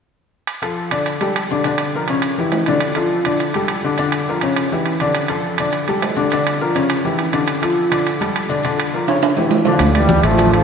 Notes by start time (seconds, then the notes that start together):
0.47 high timbale, maracas
0.62 F3 F4 A4, high timbale, maracas
0.78 maracas
0.91 D3 D4 D5, high timbale, maracas
1.06 high timbale, maracas
1.21 G3 G4 A4, high timbale, maracas
1.36 high timbale, maracas
1.50 D3 D4 D5, maracas
1.64 D3 D4 D5, high timbale, maracas
1.78 high timbale, maracas
1.94 F3 F4 A#4, maracas
2.08 C#3 C#4 C#5, high timbale, maracas
2.22 high timbale, maracas
2.38 E3 E4 G4, maracas
2.52 high timbale, low timbale, maracas
2.66 D3 D4 D5, high timbale, maracas
2.80 high timbale, maracas
2.95 F3 F4 A4, high timbale, maracas
3.10 maracas
3.25 D3 D4 D5, high timbale, maracas
3.40 high timbale, maracas
3.54 G3 G4 A4, high timbale, maracas
3.68 high timbale, maracas
3.83 D3 D4 D5, maracas
3.98 D3 D4 D5, high timbale, maracas
4.12 high timbale, maracas
4.27 F3 F4 A#4, maracas
4.41 C#3 C#4 C#5, high timbale, maracas
4.56 high timbale, maracas
4.71 E3 E4 G4, maracas
4.86 high timbale, maracas
5.00 D3 D4 D5, high timbale, maracas
5.14 high timbale, maracas
5.28 F3 F4 A4, high timbale, maracas
5.44 maracas
5.58 D3 D4 D5, high timbale, maracas
5.72 high timbale, maracas
5.87 G3 G4 A4, high timbale, maracas
6.02 high timbale, low timbale, maracas
6.16 D3 D4 D5, maracas
6.30 D3 D4 D5, high timbale, maracas
6.45 high timbale, maracas
6.60 F3 F4 A#4, maracas
6.74 C#3 C#4 C#5, high timbale, maracas
6.89 high timbale, maracas
7.04 E3 E4 G4, maracas
7.18 high timbale, maracas
7.32 D3 D4 D5, high timbale, maracas
7.47 high timbale, maracas
7.61 F3 F4 A4, high timbale, maracas
7.76 maracas
7.91 D3 D4 D5, high timbale, maracas
8.06 high timbale, maracas
8.21 G3 G4 A4, high timbale, maracas
8.35 high timbale, maracas
8.49 D3 D4 D5, maracas
8.63 D3 D4 D5, high timbale, maracas
8.78 high timbale, maracas
8.93 F3 F4 A#4, maracas
9.07 C#3 C#4 C#5, high timbale, maracas
9.22 high timbale, maracas
9.37 E3 E4 G4, low timbale, maracas
9.51 low timbale, maracas
9.65 D3 F3 D4 D5, low timbale, maracas
9.79 D2, high bongo, high conga, high timbale, maracas
9.94 E3 G3 D4 D5, high conga, high timbale, maracas
10.09 high bongo, high conga, maracas
10.23 A1 F3 A3 F4, high bongo, high conga, high timbale, maracas
10.38 high bongo, high conga, high timbale, maracas
10.53 D3 F3 A3 A4, high bongo, high conga, high timbale, maracas